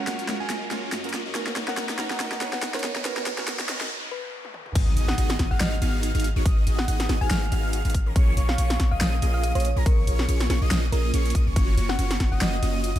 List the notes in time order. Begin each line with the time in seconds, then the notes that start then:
Already playing: F#3 G#3 C#4 F4 A#4, riser
0.00 F#4 A#4
0.07 F#1 A#3 C#4 F4 F#4 C#5 F#5, snare, closed hi-hat
0.19 closed hi-hat
0.27 F#1 G#3 A#3 C#4 F4 F#4 A#4 C#5, snare, closed hi-hat
0.40 F#1 A#3 C#4 F4 F#4 D#5 G#5
0.49 F#1 G#3 A#3 C#4 F4 F#4 A#4 D#5, snare, closed hi-hat
0.70 F#1 G#3 A#3 C#4 F4 F#4 A#4 C#5, snare, closed hi-hat
0.92 F#2 A#3 C#4 F4 F#4 D#5, snare, closed hi-hat
1.03 G#3 C#4 F4 F#4 A#4, closed hi-hat
1.09 closed hi-hat
1.14 F#1 A#3 C#4 F4 F#4 D#5, snare, closed hi-hat
1.25 F#2 A#3 C#4 F4 F#4 D#5
1.34 B1 A#3 B3 C#4 D#4 F#4 A#4 C#5, snare, closed hi-hat
1.47 snare
1.56 B1 B3 D#4 F#4 A#4 C#5, snare, closed hi-hat
1.67 B3 C#4 D#4 F#4 A#4 F#5, snare
1.77 B1 B3 D#4 F#4 A#4 C#5, snare, closed hi-hat
1.89 snare, closed hi-hat
1.98 B1 B3 C#4 D#4 F#4 A#4 C#5, snare, closed hi-hat
2.10 B1 B3 D#4 F#4 A#4 D#5 F#5, snare
2.19 B1 B3 C#4 D#4 F#4 A#4 D#5, snare, closed hi-hat
2.32 snare
2.40 B1 B3 C#4 D#4 F#4 A#4 B4 C#5, snare, closed hi-hat
2.53 F#5, snare
2.63 B1 B3 D#4 F#4 A#4 D#5 F#5, snare, closed hi-hat
2.73 B3 C#4 D#4 F#4 A#4 C#5, snare, closed hi-hat
2.79 closed hi-hat
2.84 B1 B3 D#4 F#4 A#4 D#5, snare, closed hi-hat
2.96 B1 B3 D#4 F#4 A#4 D#5, snare
3.04 B1 B3 C#4 D#4 F#4 A#4 B4 C#5, snare, closed hi-hat, noise sweep
3.17 snare
3.26 B1 B3 D#4 F#4 A#4 C#5, snare, closed hi-hat
3.37 B3 C#4 D#4 F#4 A#4, snare
3.48 B1 B3 D#4 F#4 A#4 C#5, snare, closed hi-hat
3.60 snare, closed hi-hat
3.68 B1 B3 C#4 D#4 F#4 A#4 C#5, snare, closed hi-hat
3.81 B1 B3 D#4 F#4 A#4 D#5, snare
4.11 B4
4.45 high tom
4.54 mid tom
4.66 mid tom
4.75 G#1 B3 D#4 F#4 G#4 D#5 D#6, kick, closed hi-hat, crash, impact
4.97 G#1 B3 D#4 F#4 G#4 D#5 D#6, closed hi-hat
5.08 F#5, snare
5.18 G#1 B3 D#4 F#4 G#4 D#5 D#6, closed hi-hat
5.30 snare, closed hi-hat
5.39 G#1 B3 D#4 F#4 G#4 D#5 D#6, kick, snare, closed hi-hat
5.51 G#1 B3 D#4 F#4 G#4 F5 F#5 F6
5.60 G#1 B3 D#4 F#4 G#4 D#5 F5 F6, snare, closed hi-hat
5.82 G#1 B3 D#4 F#4 G#4 F5 F6, closed hi-hat
6.03 closed hi-hat
6.15 G#1 B3 D#4 F#4 G#4 F5 F6, closed hi-hat
6.20 closed hi-hat
6.24 closed hi-hat
6.36 G#1 B3 D#4 F#4 G#4 C#5 C#6
6.45 G#1 B3 D#4 F#4 G#4 D#5 D#6, kick, closed hi-hat
6.67 G#1 B3 D#4 F#4 G#4 D#5 D#6, closed hi-hat
6.79 F#5, snare
6.88 G#1 B3 D#4 F#4 G#4 D#5 F#5 D#6, closed hi-hat
7.00 snare, closed hi-hat
7.09 G#1 B3 D#4 F#4 G#4 D#5 D#6, snare, closed hi-hat
7.21 G#1 B3 D#4 F#4 G#4 F5 G#5 F6
7.31 G#1 B3 D#4 F#4 G#4 F5 F6, snare, closed hi-hat
7.52 G#1 B3 D#4 F#4 G#4 F5 F6, closed hi-hat
7.73 closed hi-hat
7.85 G#1 B3 D#4 F#4 G#4 F5 F6, closed hi-hat
7.90 closed hi-hat
7.95 kick, closed hi-hat
8.06 A#1 A#3 C#4 F4 G#4 A#4 A#5
8.16 A#1 A#3 C#4 F4 G#4 C#5 C#6, kick, closed hi-hat
8.37 A#1 A#3 C#4 F4 G#4 C#5 C#6, closed hi-hat
8.49 F5, snare
8.58 A#1 A#3 C#4 F4 G#4 C#5 C#6, closed hi-hat
8.70 snare, closed hi-hat
8.80 A#1 A#3 C#4 F4 G#4 C#5 C#6, kick, snare, closed hi-hat
8.91 A#1 A#3 C#4 F4 G#4 D#5 F5 D#6
9.01 A#1 A#3 C#4 F4 G#4 D#5 D#6, snare, closed hi-hat
9.22 A#1 A#3 C#4 F4 G#4 D#5 D#6, closed hi-hat
9.34 F5
9.43 F5, closed hi-hat
9.55 A#1 A#3 C#4 F4 G#4 C#5 D#5 D#6, closed hi-hat
9.60 closed hi-hat
9.65 closed hi-hat
9.76 A#1 A#3 C#4 F4 G#4 A#4 A#5
9.86 A#1 A#3 C#4 F4 G#4 A#4 C#5 C#6, kick, closed hi-hat
10.07 A#1 A#3 C#4 F4 G#4 C#5 C#6, closed hi-hat
10.19 snare
10.29 A#1 A#3 C#4 F4 G#4 C#5 C#6, closed hi-hat
10.40 snare, closed hi-hat
10.50 A#1 A#3 C#4 F4 G#4 C#5 C#6, snare, closed hi-hat
10.62 A#1 A#3 C#4 F4 G#4 D#5 D#6
10.71 A#1 A#3 C#4 F4 G#4 D#5 D#6, snare, closed hi-hat
10.92 A#1 A#3 C#4 F4 G#4 A#4 D#5 D#6, closed hi-hat
11.14 A#1 A#3 C#4 F4 G#4 C#5 C#6, closed hi-hat
11.25 closed hi-hat
11.30 closed hi-hat
11.35 A#1 A#3 C#4 F4 G#4 D#5 D#6, kick, closed hi-hat
11.47 A#1 A#3 C#4 F4 G#4 C#5 C#6
11.56 F#1 A#3 C#4 F4 F#4 C#5 C#6, kick, closed hi-hat
11.77 F#1 A#3 C#4 F4 F#4 C#5 C#6, closed hi-hat
11.89 F#5, snare
11.99 F#1 A#3 C#4 F4 F#4 C#5 C#6, closed hi-hat
12.11 snare, closed hi-hat
12.20 F#1 A#3 C#4 F4 F#4 C#5 C#6, kick, snare, closed hi-hat
12.32 F#1 A#3 C#4 F4 F#4 D#5 F#5 D#6
12.41 F#1 A#3 C#4 F4 F#4 D#5 D#6, snare, closed hi-hat
12.63 F#1 A#3 C#4 F4 F#4 D#5 D#6, closed hi-hat
12.84 closed hi-hat
12.96 F#1 A#3 C#4 F4 F#4 D#5 D#6, closed hi-hat